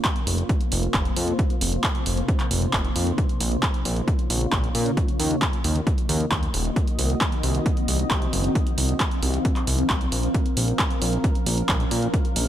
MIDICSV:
0, 0, Header, 1, 4, 480
1, 0, Start_track
1, 0, Key_signature, -5, "minor"
1, 0, Tempo, 447761
1, 1490, Time_signature, 4, 2, 24, 8
1, 13380, End_track
2, 0, Start_track
2, 0, Title_t, "Ambient pad"
2, 0, Program_c, 0, 92
2, 0, Note_on_c, 0, 48, 81
2, 0, Note_on_c, 0, 58, 71
2, 0, Note_on_c, 0, 65, 71
2, 0, Note_on_c, 0, 72, 88
2, 1471, Note_off_c, 0, 65, 0
2, 1489, Note_on_c, 0, 63, 73
2, 3371, Note_off_c, 0, 48, 0
2, 3372, Note_off_c, 0, 72, 0
2, 3390, Note_off_c, 0, 63, 0
2, 3409, Note_on_c, 0, 49, 79
2, 3409, Note_on_c, 0, 65, 75
2, 3409, Note_on_c, 0, 73, 91
2, 5310, Note_off_c, 0, 49, 0
2, 5310, Note_off_c, 0, 65, 0
2, 5310, Note_off_c, 0, 73, 0
2, 5330, Note_on_c, 0, 51, 80
2, 5330, Note_on_c, 0, 66, 73
2, 5330, Note_on_c, 0, 75, 88
2, 7207, Note_off_c, 0, 58, 0
2, 7250, Note_on_c, 0, 60, 76
2, 9131, Note_off_c, 0, 51, 0
2, 9131, Note_off_c, 0, 66, 0
2, 9131, Note_off_c, 0, 75, 0
2, 9151, Note_off_c, 0, 60, 0
2, 9170, Note_on_c, 0, 53, 81
2, 9170, Note_on_c, 0, 60, 75
2, 9170, Note_on_c, 0, 70, 70
2, 9170, Note_on_c, 0, 77, 90
2, 11071, Note_off_c, 0, 53, 0
2, 11071, Note_off_c, 0, 60, 0
2, 11089, Note_on_c, 0, 53, 78
2, 11090, Note_on_c, 0, 61, 73
2, 13380, Note_off_c, 0, 53, 0
2, 13380, Note_off_c, 0, 61, 0
2, 13380, Note_off_c, 0, 70, 0
2, 13380, Note_off_c, 0, 77, 0
2, 13380, End_track
3, 0, Start_track
3, 0, Title_t, "Analog synth bass"
3, 0, Program_c, 1, 38
3, 289, Note_on_c, 1, 29, 93
3, 467, Note_off_c, 1, 29, 0
3, 769, Note_on_c, 1, 29, 97
3, 947, Note_off_c, 1, 29, 0
3, 1009, Note_on_c, 1, 29, 99
3, 1187, Note_off_c, 1, 29, 0
3, 1249, Note_on_c, 1, 41, 103
3, 1427, Note_off_c, 1, 41, 0
3, 1729, Note_on_c, 1, 29, 96
3, 1907, Note_off_c, 1, 29, 0
3, 2209, Note_on_c, 1, 29, 89
3, 2387, Note_off_c, 1, 29, 0
3, 2689, Note_on_c, 1, 29, 100
3, 2867, Note_off_c, 1, 29, 0
3, 2929, Note_on_c, 1, 29, 95
3, 3107, Note_off_c, 1, 29, 0
3, 3170, Note_on_c, 1, 41, 92
3, 3347, Note_off_c, 1, 41, 0
3, 3650, Note_on_c, 1, 34, 96
3, 3827, Note_off_c, 1, 34, 0
3, 4129, Note_on_c, 1, 34, 94
3, 4307, Note_off_c, 1, 34, 0
3, 4609, Note_on_c, 1, 34, 93
3, 4787, Note_off_c, 1, 34, 0
3, 4850, Note_on_c, 1, 34, 99
3, 5027, Note_off_c, 1, 34, 0
3, 5090, Note_on_c, 1, 46, 105
3, 5267, Note_off_c, 1, 46, 0
3, 5570, Note_on_c, 1, 39, 100
3, 5747, Note_off_c, 1, 39, 0
3, 6050, Note_on_c, 1, 39, 97
3, 6227, Note_off_c, 1, 39, 0
3, 6530, Note_on_c, 1, 39, 97
3, 6707, Note_off_c, 1, 39, 0
3, 6770, Note_on_c, 1, 39, 103
3, 6947, Note_off_c, 1, 39, 0
3, 7009, Note_on_c, 1, 27, 102
3, 7187, Note_off_c, 1, 27, 0
3, 7489, Note_on_c, 1, 36, 96
3, 7667, Note_off_c, 1, 36, 0
3, 7970, Note_on_c, 1, 36, 95
3, 8147, Note_off_c, 1, 36, 0
3, 8450, Note_on_c, 1, 36, 96
3, 8627, Note_off_c, 1, 36, 0
3, 8689, Note_on_c, 1, 36, 101
3, 8867, Note_off_c, 1, 36, 0
3, 8929, Note_on_c, 1, 30, 97
3, 9107, Note_off_c, 1, 30, 0
3, 9409, Note_on_c, 1, 36, 98
3, 9587, Note_off_c, 1, 36, 0
3, 9889, Note_on_c, 1, 36, 97
3, 10067, Note_off_c, 1, 36, 0
3, 10369, Note_on_c, 1, 36, 97
3, 10547, Note_off_c, 1, 36, 0
3, 10610, Note_on_c, 1, 36, 98
3, 10787, Note_off_c, 1, 36, 0
3, 10849, Note_on_c, 1, 34, 84
3, 11027, Note_off_c, 1, 34, 0
3, 11329, Note_on_c, 1, 34, 98
3, 11507, Note_off_c, 1, 34, 0
3, 11809, Note_on_c, 1, 34, 97
3, 11987, Note_off_c, 1, 34, 0
3, 12290, Note_on_c, 1, 34, 97
3, 12467, Note_off_c, 1, 34, 0
3, 12529, Note_on_c, 1, 34, 98
3, 12707, Note_off_c, 1, 34, 0
3, 12770, Note_on_c, 1, 46, 100
3, 12947, Note_off_c, 1, 46, 0
3, 13250, Note_on_c, 1, 34, 97
3, 13380, Note_off_c, 1, 34, 0
3, 13380, End_track
4, 0, Start_track
4, 0, Title_t, "Drums"
4, 49, Note_on_c, 9, 36, 127
4, 49, Note_on_c, 9, 39, 124
4, 49, Note_on_c, 9, 42, 66
4, 156, Note_off_c, 9, 36, 0
4, 157, Note_off_c, 9, 39, 0
4, 157, Note_off_c, 9, 42, 0
4, 169, Note_on_c, 9, 42, 40
4, 276, Note_off_c, 9, 42, 0
4, 289, Note_on_c, 9, 46, 112
4, 397, Note_off_c, 9, 46, 0
4, 410, Note_on_c, 9, 42, 36
4, 517, Note_off_c, 9, 42, 0
4, 529, Note_on_c, 9, 36, 127
4, 529, Note_on_c, 9, 42, 62
4, 636, Note_off_c, 9, 36, 0
4, 637, Note_off_c, 9, 42, 0
4, 650, Note_on_c, 9, 42, 36
4, 757, Note_off_c, 9, 42, 0
4, 769, Note_on_c, 9, 46, 104
4, 876, Note_off_c, 9, 46, 0
4, 889, Note_on_c, 9, 42, 39
4, 997, Note_off_c, 9, 42, 0
4, 1009, Note_on_c, 9, 36, 127
4, 1009, Note_on_c, 9, 39, 118
4, 1009, Note_on_c, 9, 42, 63
4, 1116, Note_off_c, 9, 36, 0
4, 1116, Note_off_c, 9, 39, 0
4, 1116, Note_off_c, 9, 42, 0
4, 1129, Note_on_c, 9, 42, 39
4, 1237, Note_off_c, 9, 42, 0
4, 1249, Note_on_c, 9, 46, 112
4, 1356, Note_off_c, 9, 46, 0
4, 1369, Note_on_c, 9, 42, 39
4, 1477, Note_off_c, 9, 42, 0
4, 1489, Note_on_c, 9, 36, 121
4, 1489, Note_on_c, 9, 42, 63
4, 1596, Note_off_c, 9, 36, 0
4, 1596, Note_off_c, 9, 42, 0
4, 1609, Note_on_c, 9, 42, 36
4, 1716, Note_off_c, 9, 42, 0
4, 1729, Note_on_c, 9, 46, 111
4, 1836, Note_off_c, 9, 46, 0
4, 1850, Note_on_c, 9, 42, 36
4, 1957, Note_off_c, 9, 42, 0
4, 1969, Note_on_c, 9, 36, 123
4, 1970, Note_on_c, 9, 39, 120
4, 1970, Note_on_c, 9, 42, 64
4, 2076, Note_off_c, 9, 36, 0
4, 2077, Note_off_c, 9, 39, 0
4, 2077, Note_off_c, 9, 42, 0
4, 2089, Note_on_c, 9, 42, 37
4, 2197, Note_off_c, 9, 42, 0
4, 2209, Note_on_c, 9, 46, 108
4, 2316, Note_off_c, 9, 46, 0
4, 2330, Note_on_c, 9, 42, 37
4, 2437, Note_off_c, 9, 42, 0
4, 2449, Note_on_c, 9, 36, 127
4, 2450, Note_on_c, 9, 42, 57
4, 2556, Note_off_c, 9, 36, 0
4, 2557, Note_off_c, 9, 42, 0
4, 2570, Note_on_c, 9, 39, 37
4, 2570, Note_on_c, 9, 42, 36
4, 2677, Note_off_c, 9, 39, 0
4, 2677, Note_off_c, 9, 42, 0
4, 2690, Note_on_c, 9, 46, 105
4, 2797, Note_off_c, 9, 46, 0
4, 2810, Note_on_c, 9, 42, 38
4, 2917, Note_off_c, 9, 42, 0
4, 2929, Note_on_c, 9, 36, 121
4, 2930, Note_on_c, 9, 39, 112
4, 2930, Note_on_c, 9, 42, 61
4, 3036, Note_off_c, 9, 36, 0
4, 3037, Note_off_c, 9, 39, 0
4, 3037, Note_off_c, 9, 42, 0
4, 3050, Note_on_c, 9, 42, 37
4, 3157, Note_off_c, 9, 42, 0
4, 3170, Note_on_c, 9, 46, 108
4, 3277, Note_off_c, 9, 46, 0
4, 3290, Note_on_c, 9, 42, 37
4, 3397, Note_off_c, 9, 42, 0
4, 3409, Note_on_c, 9, 36, 113
4, 3410, Note_on_c, 9, 42, 58
4, 3517, Note_off_c, 9, 36, 0
4, 3517, Note_off_c, 9, 42, 0
4, 3531, Note_on_c, 9, 42, 36
4, 3638, Note_off_c, 9, 42, 0
4, 3650, Note_on_c, 9, 46, 104
4, 3757, Note_off_c, 9, 46, 0
4, 3770, Note_on_c, 9, 42, 37
4, 3877, Note_off_c, 9, 42, 0
4, 3890, Note_on_c, 9, 36, 125
4, 3890, Note_on_c, 9, 39, 116
4, 3890, Note_on_c, 9, 42, 62
4, 3997, Note_off_c, 9, 36, 0
4, 3997, Note_off_c, 9, 39, 0
4, 3997, Note_off_c, 9, 42, 0
4, 4010, Note_on_c, 9, 42, 39
4, 4118, Note_off_c, 9, 42, 0
4, 4131, Note_on_c, 9, 46, 102
4, 4238, Note_off_c, 9, 46, 0
4, 4250, Note_on_c, 9, 42, 35
4, 4357, Note_off_c, 9, 42, 0
4, 4370, Note_on_c, 9, 36, 124
4, 4371, Note_on_c, 9, 42, 62
4, 4477, Note_off_c, 9, 36, 0
4, 4478, Note_off_c, 9, 42, 0
4, 4490, Note_on_c, 9, 42, 38
4, 4598, Note_off_c, 9, 42, 0
4, 4610, Note_on_c, 9, 46, 105
4, 4717, Note_off_c, 9, 46, 0
4, 4730, Note_on_c, 9, 42, 37
4, 4838, Note_off_c, 9, 42, 0
4, 4850, Note_on_c, 9, 36, 121
4, 4850, Note_on_c, 9, 39, 106
4, 4850, Note_on_c, 9, 42, 61
4, 4957, Note_off_c, 9, 36, 0
4, 4958, Note_off_c, 9, 39, 0
4, 4958, Note_off_c, 9, 42, 0
4, 4970, Note_on_c, 9, 42, 37
4, 5078, Note_off_c, 9, 42, 0
4, 5090, Note_on_c, 9, 46, 103
4, 5197, Note_off_c, 9, 46, 0
4, 5210, Note_on_c, 9, 42, 39
4, 5318, Note_off_c, 9, 42, 0
4, 5330, Note_on_c, 9, 36, 112
4, 5330, Note_on_c, 9, 42, 63
4, 5437, Note_off_c, 9, 36, 0
4, 5437, Note_off_c, 9, 42, 0
4, 5450, Note_on_c, 9, 42, 39
4, 5557, Note_off_c, 9, 42, 0
4, 5570, Note_on_c, 9, 46, 101
4, 5677, Note_off_c, 9, 46, 0
4, 5690, Note_on_c, 9, 42, 38
4, 5797, Note_off_c, 9, 42, 0
4, 5810, Note_on_c, 9, 36, 114
4, 5810, Note_on_c, 9, 39, 118
4, 5810, Note_on_c, 9, 42, 66
4, 5917, Note_off_c, 9, 36, 0
4, 5917, Note_off_c, 9, 39, 0
4, 5917, Note_off_c, 9, 42, 0
4, 5930, Note_on_c, 9, 42, 40
4, 6038, Note_off_c, 9, 42, 0
4, 6050, Note_on_c, 9, 46, 97
4, 6157, Note_off_c, 9, 46, 0
4, 6170, Note_on_c, 9, 42, 37
4, 6278, Note_off_c, 9, 42, 0
4, 6290, Note_on_c, 9, 36, 120
4, 6290, Note_on_c, 9, 42, 62
4, 6397, Note_off_c, 9, 36, 0
4, 6397, Note_off_c, 9, 42, 0
4, 6410, Note_on_c, 9, 42, 39
4, 6518, Note_off_c, 9, 42, 0
4, 6531, Note_on_c, 9, 46, 102
4, 6638, Note_off_c, 9, 46, 0
4, 6651, Note_on_c, 9, 42, 41
4, 6758, Note_off_c, 9, 42, 0
4, 6769, Note_on_c, 9, 36, 111
4, 6770, Note_on_c, 9, 39, 113
4, 6770, Note_on_c, 9, 42, 65
4, 6877, Note_off_c, 9, 36, 0
4, 6877, Note_off_c, 9, 39, 0
4, 6877, Note_off_c, 9, 42, 0
4, 6890, Note_on_c, 9, 42, 39
4, 6998, Note_off_c, 9, 42, 0
4, 7010, Note_on_c, 9, 46, 103
4, 7117, Note_off_c, 9, 46, 0
4, 7130, Note_on_c, 9, 42, 38
4, 7237, Note_off_c, 9, 42, 0
4, 7249, Note_on_c, 9, 36, 113
4, 7250, Note_on_c, 9, 42, 62
4, 7357, Note_off_c, 9, 36, 0
4, 7358, Note_off_c, 9, 42, 0
4, 7370, Note_on_c, 9, 42, 41
4, 7477, Note_off_c, 9, 42, 0
4, 7490, Note_on_c, 9, 46, 99
4, 7597, Note_off_c, 9, 46, 0
4, 7610, Note_on_c, 9, 42, 41
4, 7717, Note_off_c, 9, 42, 0
4, 7729, Note_on_c, 9, 36, 118
4, 7730, Note_on_c, 9, 39, 120
4, 7730, Note_on_c, 9, 42, 68
4, 7837, Note_off_c, 9, 36, 0
4, 7837, Note_off_c, 9, 39, 0
4, 7837, Note_off_c, 9, 42, 0
4, 7850, Note_on_c, 9, 42, 42
4, 7957, Note_off_c, 9, 42, 0
4, 7969, Note_on_c, 9, 46, 97
4, 8077, Note_off_c, 9, 46, 0
4, 8090, Note_on_c, 9, 42, 41
4, 8197, Note_off_c, 9, 42, 0
4, 8209, Note_on_c, 9, 36, 117
4, 8209, Note_on_c, 9, 42, 66
4, 8316, Note_off_c, 9, 36, 0
4, 8317, Note_off_c, 9, 42, 0
4, 8329, Note_on_c, 9, 42, 38
4, 8437, Note_off_c, 9, 42, 0
4, 8450, Note_on_c, 9, 46, 96
4, 8557, Note_off_c, 9, 46, 0
4, 8570, Note_on_c, 9, 42, 40
4, 8677, Note_off_c, 9, 42, 0
4, 8689, Note_on_c, 9, 36, 114
4, 8690, Note_on_c, 9, 39, 118
4, 8690, Note_on_c, 9, 42, 65
4, 8797, Note_off_c, 9, 36, 0
4, 8797, Note_off_c, 9, 39, 0
4, 8797, Note_off_c, 9, 42, 0
4, 8810, Note_on_c, 9, 42, 41
4, 8917, Note_off_c, 9, 42, 0
4, 8930, Note_on_c, 9, 46, 103
4, 9037, Note_off_c, 9, 46, 0
4, 9050, Note_on_c, 9, 42, 40
4, 9157, Note_off_c, 9, 42, 0
4, 9169, Note_on_c, 9, 36, 114
4, 9170, Note_on_c, 9, 42, 67
4, 9277, Note_off_c, 9, 36, 0
4, 9277, Note_off_c, 9, 42, 0
4, 9290, Note_on_c, 9, 42, 43
4, 9397, Note_off_c, 9, 42, 0
4, 9410, Note_on_c, 9, 46, 100
4, 9517, Note_off_c, 9, 46, 0
4, 9530, Note_on_c, 9, 42, 40
4, 9637, Note_off_c, 9, 42, 0
4, 9650, Note_on_c, 9, 36, 120
4, 9650, Note_on_c, 9, 39, 121
4, 9650, Note_on_c, 9, 42, 72
4, 9757, Note_off_c, 9, 36, 0
4, 9757, Note_off_c, 9, 39, 0
4, 9757, Note_off_c, 9, 42, 0
4, 9770, Note_on_c, 9, 42, 41
4, 9877, Note_off_c, 9, 42, 0
4, 9890, Note_on_c, 9, 46, 102
4, 9997, Note_off_c, 9, 46, 0
4, 10010, Note_on_c, 9, 42, 38
4, 10117, Note_off_c, 9, 42, 0
4, 10130, Note_on_c, 9, 36, 116
4, 10130, Note_on_c, 9, 42, 67
4, 10237, Note_off_c, 9, 36, 0
4, 10237, Note_off_c, 9, 42, 0
4, 10250, Note_on_c, 9, 39, 35
4, 10250, Note_on_c, 9, 42, 41
4, 10357, Note_off_c, 9, 39, 0
4, 10357, Note_off_c, 9, 42, 0
4, 10370, Note_on_c, 9, 46, 95
4, 10477, Note_off_c, 9, 46, 0
4, 10490, Note_on_c, 9, 42, 42
4, 10597, Note_off_c, 9, 42, 0
4, 10610, Note_on_c, 9, 36, 116
4, 10610, Note_on_c, 9, 39, 117
4, 10610, Note_on_c, 9, 42, 71
4, 10717, Note_off_c, 9, 36, 0
4, 10717, Note_off_c, 9, 39, 0
4, 10717, Note_off_c, 9, 42, 0
4, 10730, Note_on_c, 9, 42, 42
4, 10837, Note_off_c, 9, 42, 0
4, 10850, Note_on_c, 9, 46, 103
4, 10957, Note_off_c, 9, 46, 0
4, 10970, Note_on_c, 9, 42, 42
4, 11077, Note_off_c, 9, 42, 0
4, 11089, Note_on_c, 9, 42, 67
4, 11090, Note_on_c, 9, 36, 111
4, 11197, Note_off_c, 9, 36, 0
4, 11197, Note_off_c, 9, 42, 0
4, 11209, Note_on_c, 9, 42, 40
4, 11317, Note_off_c, 9, 42, 0
4, 11330, Note_on_c, 9, 46, 105
4, 11437, Note_off_c, 9, 46, 0
4, 11450, Note_on_c, 9, 42, 42
4, 11557, Note_off_c, 9, 42, 0
4, 11570, Note_on_c, 9, 36, 123
4, 11570, Note_on_c, 9, 39, 127
4, 11570, Note_on_c, 9, 42, 70
4, 11677, Note_off_c, 9, 36, 0
4, 11677, Note_off_c, 9, 39, 0
4, 11677, Note_off_c, 9, 42, 0
4, 11690, Note_on_c, 9, 42, 42
4, 11797, Note_off_c, 9, 42, 0
4, 11810, Note_on_c, 9, 46, 106
4, 11917, Note_off_c, 9, 46, 0
4, 11930, Note_on_c, 9, 42, 40
4, 12038, Note_off_c, 9, 42, 0
4, 12050, Note_on_c, 9, 36, 120
4, 12050, Note_on_c, 9, 42, 66
4, 12157, Note_off_c, 9, 36, 0
4, 12157, Note_off_c, 9, 42, 0
4, 12171, Note_on_c, 9, 42, 40
4, 12278, Note_off_c, 9, 42, 0
4, 12290, Note_on_c, 9, 46, 101
4, 12397, Note_off_c, 9, 46, 0
4, 12411, Note_on_c, 9, 42, 41
4, 12518, Note_off_c, 9, 42, 0
4, 12530, Note_on_c, 9, 36, 121
4, 12531, Note_on_c, 9, 39, 119
4, 12531, Note_on_c, 9, 42, 68
4, 12637, Note_off_c, 9, 36, 0
4, 12638, Note_off_c, 9, 39, 0
4, 12638, Note_off_c, 9, 42, 0
4, 12651, Note_on_c, 9, 42, 40
4, 12758, Note_off_c, 9, 42, 0
4, 12770, Note_on_c, 9, 46, 108
4, 12877, Note_off_c, 9, 46, 0
4, 12890, Note_on_c, 9, 42, 40
4, 12997, Note_off_c, 9, 42, 0
4, 13010, Note_on_c, 9, 36, 116
4, 13010, Note_on_c, 9, 42, 66
4, 13117, Note_off_c, 9, 36, 0
4, 13118, Note_off_c, 9, 42, 0
4, 13130, Note_on_c, 9, 42, 38
4, 13238, Note_off_c, 9, 42, 0
4, 13250, Note_on_c, 9, 46, 109
4, 13357, Note_off_c, 9, 46, 0
4, 13380, End_track
0, 0, End_of_file